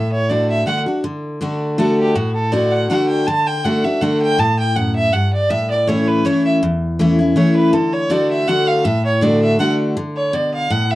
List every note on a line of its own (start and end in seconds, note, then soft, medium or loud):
0.00 0.63 A2 medium
0.00 0.11 E5 medium
0.12 0.31 C#5 medium
0.29 0.65 D3 medium
0.29 0.65 A3 medium
0.29 0.65 D4 medium
0.29 0.65 F#4 medium
0.29 0.49 D5 medium
0.50 0.66 E5 medium
0.66 0.85 D3 medium
0.66 0.86 A3 medium
0.66 0.86 D4 medium
0.66 0.85 F#4 medium
0.66 0.78 F#5 medium
0.86 1.04 D4 soft
0.86 1.03 F#4 medium
1.04 1.40 D3 medium
1.41 1.76 D3 medium
1.41 1.77 A3 medium
1.41 1.77 D4 medium
1.41 1.77 F#4 loud
1.78 2.14 D3 medium
1.78 2.14 A3 medium
1.78 2.14 D4 medium
1.78 2.14 F#4 medium
1.78 1.97 A4 medium
1.98 2.17 G4 medium
2.15 2.87 A2 medium
2.15 2.34 F#4 medium
2.35 2.54 A4 medium
2.52 2.88 D3 medium
2.52 2.88 A3 medium
2.52 2.89 D4 medium
2.52 2.89 F#4 medium
2.52 2.73 D5 medium
2.71 2.89 F#5 medium
2.89 3.25 D3 medium
2.89 3.26 A3 medium
2.89 3.26 D4 medium
2.89 3.26 F#4 medium
2.89 3.08 F#5 medium
3.08 3.28 G5 medium
3.27 3.63 D3 medium
3.27 3.48 A5 loud
3.47 3.66 G5 medium
3.64 3.83 D3 medium
3.64 3.84 A3 medium
3.64 3.84 D4 loud
3.64 3.83 F#4 medium
3.64 3.86 F#5 medium
3.84 4.01 D4 soft
3.84 4.01 F#4 medium
3.84 4.03 E5 medium
4.01 4.37 D3 medium
4.01 4.37 A3 medium
4.01 4.37 D4 medium
4.01 4.38 F#4 medium
4.01 4.21 F#5 medium
4.22 4.41 G5 loud
4.38 5.10 A2 medium
4.38 4.58 A5 loud
4.59 4.77 G5 medium
4.76 5.12 F#2 medium
4.76 4.95 F#5 medium
4.95 5.14 E5 loud
5.13 5.49 G2 medium
5.13 5.32 F#5 medium
5.33 5.51 D5 medium
5.50 6.21 A2 medium
5.50 5.69 E5 loud
5.70 5.89 D5 medium
5.87 6.23 E3 medium
5.87 6.24 A3 medium
5.87 6.24 C#4 medium
5.87 6.24 E4 loud
5.87 6.09 C#5 medium
6.08 6.27 B4 medium
6.25 6.60 E3 medium
6.25 6.61 A3 medium
6.25 6.61 C#4 medium
6.25 6.61 E4 loud
6.25 6.45 C#5 medium
6.45 6.56 E5 medium
6.63 7.33 E2 loud
6.99 7.18 E3 medium
6.99 7.18 A3 medium
6.99 7.19 C#4 medium
6.99 7.17 E4 medium
7.19 7.35 C#4 medium
7.19 7.36 E4 medium
7.36 7.72 E3 medium
7.36 7.72 A3 medium
7.36 7.72 C#4 medium
7.36 7.72 E4 loud
7.36 7.55 C#5 medium
7.56 7.74 B4 medium
7.73 8.09 D3 medium
7.73 7.95 A4 medium
7.93 8.12 C#5 medium
8.10 8.46 D3 medium
8.10 8.46 A3 medium
8.10 8.46 D4 medium
8.10 8.47 F#4 medium
8.10 8.30 D5 medium
8.31 8.49 E5 medium
8.48 8.83 D3 medium
8.48 8.84 A3 medium
8.48 8.84 D4 medium
8.48 8.84 F#4 medium
8.48 8.69 F#5 loud
8.67 8.86 F5 medium
8.85 9.56 A2 medium
8.85 9.04 E5 medium
9.05 9.24 C#5 medium
9.21 9.57 D3 medium
9.21 9.58 A3 loud
9.21 9.58 D4 medium
9.21 9.58 F#4 medium
9.21 9.41 D5 medium
9.42 9.58 E5 medium
9.59 9.95 D3 medium
9.59 9.95 A3 medium
9.59 9.95 D4 medium
9.59 9.95 F#4 medium
9.59 9.71 F#5 medium
9.97 10.67 D3 medium
10.16 10.36 C#5 medium
10.33 10.69 B2 medium
10.33 10.53 D5 medium
10.54 10.73 F5 medium
10.70 10.95 A2 medium
10.70 10.92 F#5 medium
10.90 10.95 E5 medium